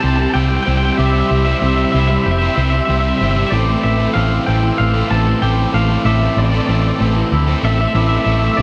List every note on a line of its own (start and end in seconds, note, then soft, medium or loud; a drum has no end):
0.00 0.26 C2 loud
0.00 0.33 C3 loud
0.00 0.34 G3 loud
0.00 0.35 G3 medium
0.00 0.19 C4 medium
0.00 0.66 C4 medium
0.00 0.20 C4 medium
0.00 0.19 E4 medium
0.00 1.93 E4 medium
0.00 0.19 E4 medium
0.00 0.18 G4 medium
0.00 0.34 G4 medium
0.00 3.48 G4 medium
0.00 0.18 C5 medium
0.00 8.54 C5 medium
0.00 8.54 G5 medium
0.00 8.54 C6 loud
0.00 0.35 G6 loud
0.04 0.18 G4 medium
0.04 0.18 C5 medium
0.04 0.15 A5 medium
0.16 0.34 G4 medium
0.16 0.36 C5 medium
0.16 0.21 A5 loud
0.16 muted distorted electric guitar stroke medium
0.20 0.34 C4 medium
0.20 0.35 E4 medium
0.20 0.29 A5 medium
0.30 0.95 C3 loud
0.30 0.41 G5 loud
0.30 0.33 A5 medium
0.34 0.57 C2 medium
0.34 0.96 G3 loud
0.34 0.65 C4 loud
0.34 0.66 E4 loud
0.34 0.66 G4 loud
0.34 0.68 C5 loud
0.34 0.98 E6 medium
0.41 0.48 G5 medium
0.48 0.56 G5 medium
0.57 0.62 G5 medium
0.63 0.84 C4 medium
0.63 0.84 E4 medium
0.63 0.70 G5 loud
0.67 0.90 C2 medium
0.67 0.82 G4 medium
0.67 0.81 C5 medium
0.67 0.77 G5 medium
0.77 0.85 G5 loud
0.82 0.98 C4 medium
0.82 0.98 E4 medium
0.82 0.98 G4 medium
0.82 0.99 C5 medium
0.82 0.92 G5 medium
0.92 0.97 G5 medium
0.96 1.21 C2 loud
0.96 1.45 C3 loud
0.96 1.45 G3 loud
0.96 1.16 C4 loud
0.96 1.15 E4 loud
0.96 1.13 G4 loud
0.96 1.13 C5 loud
0.96 1.05 E5 loud
0.96 1.62 D6 loud
1.06 1.12 E5 medium
1.12 1.47 C4 medium
1.12 1.47 E4 medium
1.12 1.45 G4 medium
1.12 1.45 C5 medium
1.12 1.20 E5 medium
1.20 1.28 E5 medium
1.29 1.53 C2 loud
1.29 2.88 G3 medium
1.29 1.37 E5 medium
1.37 1.44 E5 medium
1.45 1.61 C4 medium
1.45 1.62 E4 medium
1.45 1.62 G4 medium
1.45 1.63 C5 medium
1.45 1.52 E5 loud
1.53 1.59 E5 medium
1.59 1.84 C2 medium
1.59 2.25 C3 loud
1.59 2.25 G3 loud
1.59 1.92 C4 loud
1.59 1.93 E4 loud
1.59 1.93 G4 loud
1.59 1.95 C5 loud
1.59 1.67 E5 medium
1.59 2.26 E6 medium
1.69 1.76 E5 medium
1.76 1.84 E5 medium
1.84 1.92 E5 medium
1.92 2.16 C2 medium
1.92 2.11 C4 medium
1.92 2.10 E4 medium
1.92 2.08 G4 medium
1.92 2.07 C5 medium
1.92 1.99 E5 medium
2.00 2.07 E5 medium
2.08 2.42 C4 medium
2.08 2.41 E4 medium
2.08 2.40 G4 medium
2.08 2.39 C5 medium
2.08 2.15 E5 loud
2.08 muted distorted electric guitar stroke medium
2.16 2.23 E5 medium
2.24 2.48 F1 loud
2.24 2.88 G4 medium
2.24 2.31 E5 medium
2.24 2.89 G6 medium
2.31 2.38 E5 medium
2.38 2.57 E4 medium
2.38 2.57 G4 medium
2.38 2.58 C5 medium
2.38 2.46 E5 medium
2.43 2.56 C4 medium
2.47 2.55 E5 medium
2.56 2.80 C2 loud
2.56 2.74 C4 medium
2.56 2.73 E4 medium
2.56 2.72 G4 medium
2.56 2.71 C5 medium
2.56 2.63 E5 loud
2.63 2.69 E5 medium
2.70 2.88 E4 medium
2.70 2.88 G4 medium
2.70 2.89 C5 medium
2.70 2.77 E5 medium
2.70 muted distorted electric guitar stroke medium
2.74 2.87 C4 medium
2.79 2.85 E5 medium
2.85 3.11 C2 medium
2.85 3.49 C3 medium
2.85 3.49 G3 loud
2.85 3.19 C4 loud
2.85 3.20 E4 loud
2.85 3.20 G4 loud
2.85 2.93 E5 medium
2.90 3.22 C5 loud
2.90 3.52 E6 medium
2.94 3.00 E5 medium
3.00 3.08 E5 medium
3.09 3.16 E5 medium
3.17 3.43 G1 medium
3.17 3.37 C4 medium
3.17 3.36 E4 medium
3.17 3.35 G4 medium
3.17 3.23 E5 medium
3.22 3.34 C5 medium
3.22 3.30 E5 medium
3.31 3.53 C5 medium
3.31 3.38 E5 medium
3.36 3.51 C4 medium
3.36 3.52 E4 medium
3.36 3.50 G4 medium
3.36 3.46 E5 medium
3.47 3.84 D5 loud
3.47 3.54 E5 medium
3.51 3.74 A1 medium
3.51 4.14 A2 medium
3.51 4.15 E3 loud
3.51 3.70 A3 loud
3.51 3.69 C4 loud
3.51 3.68 E4 medium
3.51 8.54 A4 medium
3.51 3.67 A4 loud
3.51 4.16 D6 medium
3.67 4.01 A3 medium
3.67 4.00 C4 medium
3.67 3.99 E4 medium
3.67 3.98 A4 medium
3.83 4.06 A1 medium
3.83 5.42 E3 medium
3.83 4.13 E5 medium
3.98 4.15 A3 medium
3.98 4.16 C4 medium
3.98 4.17 E4 medium
3.98 4.17 A4 medium
4.14 4.38 A1 medium
4.14 5.41 A2 loud
4.14 5.41 E3 loud
4.14 4.45 A3 loud
4.14 4.46 C4 loud
4.14 4.47 E4 loud
4.14 4.48 A4 loud
4.14 4.46 F5 medium
4.14 4.78 E6 medium
4.45 4.70 A1 loud
4.45 4.63 A3 medium
4.45 4.63 C4 medium
4.45 4.62 E4 medium
4.45 4.61 A4 medium
4.45 4.78 G5 medium
4.62 4.95 A3 medium
4.62 4.94 C4 medium
4.62 4.93 E4 medium
4.62 4.92 A4 medium
4.62 muted distorted electric guitar stroke medium
4.78 5.01 A1 loud
4.78 5.10 F5 loud
4.78 5.42 E6 medium
4.94 5.08 A3 medium
4.94 5.09 C4 medium
4.94 5.10 E4 medium
4.94 5.11 A4 medium
5.09 5.33 A1 loud
5.09 5.27 A3 medium
5.09 5.26 C4 medium
5.09 5.25 E4 medium
5.09 5.24 A4 medium
5.09 5.40 A5 loud
5.25 5.41 A3 medium
5.25 5.42 C4 medium
5.25 5.42 E4 medium
5.25 5.43 A4 medium
5.25 muted distorted electric guitar stroke medium
5.41 5.65 A1 medium
5.41 6.03 A2 loud
5.41 6.03 E3 loud
5.41 5.72 A3 loud
5.41 5.73 C4 loud
5.41 5.74 E4 loud
5.41 5.75 A4 loud
5.41 5.71 G5 loud
5.41 6.05 D6 medium
5.73 5.96 A1 loud
5.73 5.90 A3 medium
5.73 5.90 C4 medium
5.73 5.88 E4 medium
5.73 5.88 A4 medium
5.73 6.05 F5 loud
5.89 6.04 A3 medium
5.89 6.05 C4 medium
5.89 6.05 E4 medium
5.89 6.06 A4 medium
6.04 6.27 A1 loud
6.04 6.52 A2 medium
6.04 6.52 E3 loud
6.04 6.21 A3 loud
6.04 6.20 C4 loud
6.04 6.19 E4 loud
6.04 6.18 A4 loud
6.04 6.38 E5 loud
6.04 6.69 D6 loud
6.20 6.53 A3 medium
6.20 6.52 C4 medium
6.20 6.51 E4 medium
6.20 6.50 A4 medium
6.37 6.59 A1 medium
6.37 7.95 E3 medium
6.37 6.45 D5 medium
6.46 6.52 D5 medium
6.51 6.68 A3 medium
6.51 6.68 C4 medium
6.51 6.69 E4 medium
6.51 6.69 A4 medium
6.51 6.59 D5 medium
6.60 6.66 D5 medium
6.67 6.91 A1 medium
6.67 7.31 A2 loud
6.67 7.32 E3 medium
6.67 6.98 A3 loud
6.67 6.99 C4 loud
6.67 7.00 E4 loud
6.67 7.01 A4 loud
6.67 6.74 D5 medium
6.67 7.31 E6 medium
6.76 6.81 D5 medium
6.82 6.89 D5 medium
6.90 6.97 D5 medium
6.99 7.23 A1 loud
6.99 7.17 A3 medium
6.99 7.16 C4 medium
6.99 7.15 E4 medium
6.99 7.13 A4 medium
7.15 7.48 A3 medium
7.15 7.48 C4 medium
7.15 7.46 E4 medium
7.15 7.45 A4 medium
7.15 muted distorted electric guitar stroke medium
7.32 7.54 D2 loud
7.32 7.94 E4 medium
7.32 7.95 E6 medium
7.46 7.61 A3 medium
7.46 7.62 C4 medium
7.46 7.63 E4 medium
7.46 7.64 A4 medium
7.62 7.85 A1 loud
7.62 7.80 A3 medium
7.62 7.79 C4 medium
7.62 7.78 E4 medium
7.62 7.77 A4 medium
7.62 7.72 E5 medium
7.72 7.79 E5 medium
7.78 7.94 A3 medium
7.78 7.95 C4 medium
7.78 7.95 E4 medium
7.78 7.96 A4 medium
7.78 7.87 E5 medium
7.78 muted distorted electric guitar stroke medium
7.87 7.95 E5 medium
7.94 8.17 A1 loud
7.94 8.56 A2 loud
7.94 8.56 E3 loud
7.94 8.24 A3 loud
7.94 8.25 C4 loud
7.94 8.26 E4 loud
7.94 8.27 A4 loud
7.94 8.02 E5 medium
7.94 8.58 D6 medium
8.02 8.08 E5 medium
8.09 8.16 E5 medium
8.16 8.24 E5 medium
8.24 8.49 A1 medium
8.24 8.43 A3 medium
8.24 8.43 C4 medium
8.24 8.42 E4 medium
8.24 8.41 A4 medium
8.24 8.31 E5 medium
8.32 8.39 E5 medium
8.39 8.57 E4 medium
8.39 8.56 A4 medium
8.39 8.46 E5 medium
8.44 8.58 A3 medium
8.44 8.57 C4 medium
8.44 8.53 E5 medium
8.54 8.62 G2 medium
8.54 8.62 D5 loud
8.54 8.61 E5 medium
8.58 8.62 A#1 loud
8.58 8.62 D3 loud
8.58 8.62 F4 medium
8.58 8.62 D5 medium
8.58 8.62 G5 medium